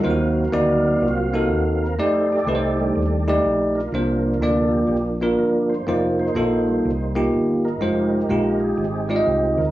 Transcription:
Already playing: F#4 A#4
0.04 D#2 D#3 F#3 A#3 C4 D#4 F4 C5 F5
0.10 F#4
0.52 D2 A#3 D#4 F#4 D5
0.78 A4
0.85 F#4
1.01 C2 F#3 A#3 C4 F4 F#4
1.33 A#3 D#4 F4 F#4 A4
1.50 D#2 F#4
1.82 A#4
1.99 F2 A3 D#4 G4 A4 C5 D5
2.32 G4 A4 D5
2.46 C2 A3 D#4 G4 B4
2.55 C5
2.79 D#3 G3 A3 D4
2.95 D#2
3.28 A3 D#4 G4 D5
3.44 A#1
3.75 D4 F4 A#4
3.92 C2 C3 F3 A#3 D4 F4 C5
4.40 D2 A#3 D4 F4 A4 D5
4.71 G4
4.87 A#1 A#3 D4 G4
5.21 A#3 D4 F4 A#4
5.38 G1 A#4
5.70 C5
5.87 F1 A#3 D#4 F4 C5 D5
6.19 D#4 C5
6.35 A#1 A#3 D#4 F4 A4
6.67 G3 A#3 D#4
6.85 C2
7.15 A#3 D#4 F4 G4
7.33 G1
7.65 D#4 A#4
7.81 F1 G#3 D#4 F4 G4 C5
8.12 D#4 A#4
8.29 A#1 G#3 D#4 F4 G4
8.60 G#4
8.76 G#1 C4 D#4 G#4
9.08 G#3 D#4 F4 D5
9.16 D#5
9.25 C2 G4
9.57 D2 A#4

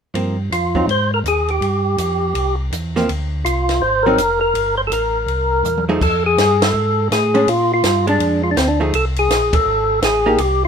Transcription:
0.14 G2 F3 A#3 C4, ride
0.51 F2 F4, hi-hat pedal, ride
0.75 F#3 C4 D#4, kick
0.88 G#2 C5, ride
1.14 A#4
1.24 D#2 G#4, hi-hat pedal, ride
1.48 G4, ride
1.61 G2, ride
1.98 F2, hi-hat pedal, ride
2.35 C2, ride
2.72 E2, hi-hat pedal, ride
2.96 F3 A#3 C4, snare
3.09 D2, ride
3.45 C2 F4, hi-hat pedal, ride
3.69 snare, ride
3.81 G#1 C5
4.03 F#3 C4 A#4
4.08 D#4
4.18 F1, hi-hat pedal, ride
4.41 A#4
4.55 G1, ride
4.77 C5
4.87 A1 A4
4.92 A#4, hi-hat pedal, ride
5.27 C2, ride
5.64 E2, floor tom, hi-hat pedal
5.77 mid tom
5.89 F3 A3 D#4 G#4, mid tom
6.01 F2 A4, kick, crash
6.26 G#4
6.37 G2, snare, hi-hat pedal, ride
6.62 A4, snare, ride
6.74 G#2
7.11 A2 G#4, snare, hi-hat pedal, ride
7.34 G#3 C#4 D4, ride
7.47 A#2 F4, ride
7.74 F4
7.83 G2, snare, hi-hat pedal, ride
8.07 G#3 D4, ride
8.20 F2, ride
8.44 F4
8.51 D4
8.57 D2 C4, snare, hi-hat pedal, ride
8.68 D4
8.80 F3 A3 D#4 G#4
8.93 C2 A4, ride
9.16 G#4, ride
9.29 A#1, snare, hi-hat pedal, ride
9.53 A#1 A4, kick, ride
9.65 G#1
10.02 A1 G#4, snare, hi-hat pedal, ride
10.26 A#3 D#4 G4
10.38 C2 G4, ride

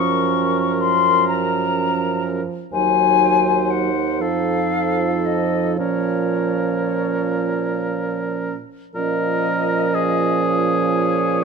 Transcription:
Already playing: F#2 F3 C#4 A#4 C#6
0.81 C6
1.28 A#5
2.72 D#2 F#3 D#4 C5 G#5
3.70 F#5
4.21 F2 F3 A4 F5
5.25 D#5
5.77 A#2 C#4 A#4 C#5
8.95 A#2 F3 C#4 A#4 D#5
9.95 G#4
10.44 C#5

